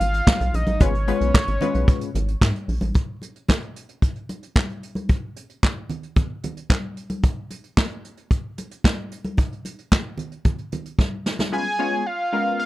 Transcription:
Already playing: F5
0.00 G#1, closed hi-hat, muted conga
0.14 closed hi-hat
0.27 kick, snare, clap, high conga
0.40 B1, closed hi-hat, high conga
0.54 A#1 D#5, closed hi-hat
0.67 A1, closed hi-hat, high conga
0.80 G#1 G#3 B3 C#4 F4 B4 C#5, kick, closed hi-hat, muted conga
0.95 closed hi-hat
1.08 G#3 B3 C#4 F4 B4, closed hi-hat
1.21 B1, closed hi-hat
1.34 kick, snare, clap, high conga
1.47 G#1, closed hi-hat
1.61 G#3 B3 C#4 F4 B4, closed hi-hat, low conga
1.74 B1, closed hi-hat
1.88 kick, closed hi-hat
2.01 closed hi-hat
2.15 G#1, closed hi-hat, muted conga, low conga
2.28 closed hi-hat
2.41 G#2, kick, snare, clap, high conga
2.56 closed hi-hat
2.68 A#1, open hi-hat
2.81 A1, closed hi-hat, high conga
2.94 kick, closed hi-hat, muted conga
3.22 closed hi-hat, muted conga
3.36 closed hi-hat
3.48 kick, snare, clap, high conga
3.62 closed hi-hat
3.76 closed hi-hat
3.89 closed hi-hat
4.02 kick, closed hi-hat
4.15 closed hi-hat
4.29 closed hi-hat, muted conga
4.43 closed hi-hat
4.56 kick, snare, clap, high conga
4.70 closed hi-hat
4.83 closed hi-hat
4.95 closed hi-hat, high conga
5.09 kick, closed hi-hat, muted conga
5.36 closed hi-hat
5.49 closed hi-hat
5.63 kick, snare, clap, high conga
5.89 closed hi-hat, low conga
6.03 closed hi-hat
6.16 kick, closed hi-hat, low conga
6.43 closed hi-hat, muted conga, low conga
6.57 closed hi-hat
6.70 kick, snare, clap, high conga
6.97 closed hi-hat
7.10 closed hi-hat, high conga
7.23 kick, closed hi-hat, muted conga
7.50 closed hi-hat, muted conga
7.64 closed hi-hat
7.77 kick, snare, clap, high conga
7.90 closed hi-hat
8.04 closed hi-hat
8.17 closed hi-hat
8.31 kick, closed hi-hat
8.58 closed hi-hat, muted conga
8.71 closed hi-hat
8.84 kick, snare, clap, high conga
9.11 closed hi-hat
9.24 closed hi-hat, high conga
9.37 kick, closed hi-hat, muted conga
9.52 closed hi-hat
9.65 closed hi-hat, muted conga
9.78 closed hi-hat
9.92 kick, snare, clap, high conga
10.18 closed hi-hat, low conga
10.32 closed hi-hat
10.45 kick, closed hi-hat, low conga
10.58 closed hi-hat
10.72 closed hi-hat, muted conga, low conga
10.85 closed hi-hat
10.99 kick, snare, high conga
11.26 snare
11.39 snare, high conga
11.52 G#3 B3 C#4 F4 B4 G#5
11.79 G#3 B3 C#4 F4 C#5
12.06 F5
12.33 G#3 B3 C#4 F4 A#4
12.59 F5

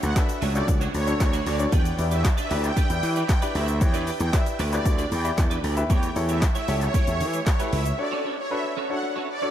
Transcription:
0.03 D2 F#5, muted clean electric guitar stroke, closed hi-hat, shaker
0.16 D4 F#4 A4 B4 E5, kick, snare, clap, closed hi-hat, shaker
0.29 muted clean electric guitar stroke, closed hi-hat, shaker
0.42 C#2 A3 D4 F#4 C#5, open hi-hat, shaker
0.55 D4 F#4 A4 C#5 D5, muted clean electric guitar stroke, clap, closed hi-hat, shaker
0.68 C#2, muted clean electric guitar stroke, kick, closed hi-hat, shaker
0.81 A3 D4 F#4 C#5, closed hi-hat, shaker
0.94 D2 C#5, muted clean electric guitar stroke, open hi-hat, shaker
1.07 D4 F#4 A4 C#5, muted clean electric guitar stroke, closed hi-hat, shaker
1.20 D2 C#5, muted clean electric guitar stroke, kick, snare, clap, closed hi-hat, shaker
1.33 A3 D4 F#4 C#5, closed hi-hat, shaker
1.46 D2 A3 D4 F#4 C#5 D5, open hi-hat, shaker
1.59 D4 F#4 A4 C#5, muted clean electric guitar stroke, closed hi-hat, shaker
1.72 E2 D4 G4 B4 D5 G5, kick, closed hi-hat, shaker
1.85 closed hi-hat, shaker
1.98 E2 E4 G4 B4 D5, muted clean electric guitar stroke, open hi-hat, shaker
2.11 D4 G4 B4 D5 E5, closed hi-hat, shaker
2.24 muted clean electric guitar stroke, kick, snare, clap, closed hi-hat, shaker
2.37 D4 G4 B4 D5 E5, closed hi-hat, shaker
2.50 D2 D4 E4 G4 B4 D5, open hi-hat, shaker
2.63 G5, muted clean electric guitar stroke, clap, closed hi-hat, shaker
2.76 D4 G4 B4 D5, kick, closed hi-hat, shaker
2.89 E2 E4 G4 B4 D5, muted clean electric guitar stroke, closed hi-hat, shaker
3.02 E3, muted clean electric guitar stroke, open hi-hat, shaker
3.15 D4 G4 B4 D5, closed hi-hat, shaker
3.29 G5, muted clean electric guitar stroke, kick, snare, clap, closed hi-hat, shaker
3.42 D4 E4 G4 B4 D5, closed hi-hat, shaker
3.54 D2 D4 G4 B4 D5 E5, open hi-hat, shaker
3.68 muted clean electric guitar stroke, closed hi-hat, shaker
3.81 E2 E4 G4 B4 C#5 G5, muted clean electric guitar stroke, kick, closed hi-hat, shaker
3.94 D4 G4 B4 D5, closed hi-hat, shaker
4.07 D4 G4 B4 D5, open hi-hat, shaker
4.20 E2 G5, muted clean electric guitar stroke, closed hi-hat, shaker
4.33 E4 G4 B4 D5 E5, kick, snare, clap, closed hi-hat, shaker
4.46 muted clean electric guitar stroke, closed hi-hat, shaker
4.59 D2 D4 G4 B4 D5, open hi-hat, shaker
4.72 E4 G4 B4 D5, muted clean electric guitar stroke, clap, closed hi-hat, shaker
4.85 D2, muted clean electric guitar stroke, kick, closed hi-hat, shaker
4.98 D4 G4 B4 D5, closed hi-hat, shaker
5.12 E2 G5, open hi-hat, shaker
5.24 E4 G4 B4 D5, muted clean electric guitar stroke, closed hi-hat, shaker
5.37 E2, muted clean electric guitar stroke, kick, snare, clap, closed hi-hat, shaker
5.50 D4 G4 B4 D5, closed hi-hat, shaker
5.63 D2 D4 G4 B4 D5, open hi-hat, shaker
5.77 E4 G4 B4 E5, muted clean electric guitar stroke, closed hi-hat, shaker
5.90 E2 A3 E4 G4 C#5 G5, kick, closed hi-hat, shaker
6.03 closed hi-hat, shaker
6.16 E2 E4 G4 A4 C#5, open hi-hat, shaker
6.29 A3 E4 G4 C#5 E5, closed hi-hat, shaker
6.42 muted clean electric guitar stroke, kick, snare, clap, closed hi-hat, shaker
6.55 A3 E4 G4 C#5 E5, closed hi-hat, shaker
6.68 C#2 A3 E4 G4 A4 C#5, open hi-hat, shaker
6.81 C#5, muted clean electric guitar stroke, clap, closed hi-hat, shaker
6.94 A3 E4 G4 C#5, kick, closed hi-hat, shaker
7.07 E2 E4 G4 A4 E5, muted clean electric guitar stroke, closed hi-hat, shaker
7.20 E3, muted clean electric guitar stroke, open hi-hat, shaker
7.33 A3 E4 G4 C#5, closed hi-hat, shaker
7.46 C#5, muted clean electric guitar stroke, kick, snare, clap, closed hi-hat, shaker
7.59 A3 E4 G4 A4 B4 C#5, closed hi-hat, shaker
7.72 C#2 A3 E4 G4 C#5 E5, open hi-hat, shaker
7.85 muted clean electric guitar stroke, closed hi-hat, shaker
7.98 D4 F#4 A4 C#5 D5, muted clean electric guitar stroke
8.11 C#4 F#4 A4 C#5
8.24 C#4 F#4 A4 C#5
8.38 C#5, muted clean electric guitar stroke
8.51 D4 F#4 A4 B4 E5
8.64 muted clean electric guitar stroke
8.77 C#4 F#4 A4 C#5
8.90 D4 F#4 A4 C#5 F#5, muted clean electric guitar stroke
9.03 muted clean electric guitar stroke
9.16 C#4 F#4 A4 C#5
9.29 D5, muted clean electric guitar stroke
9.42 D4 F#4 A4 C#5, muted clean electric guitar stroke

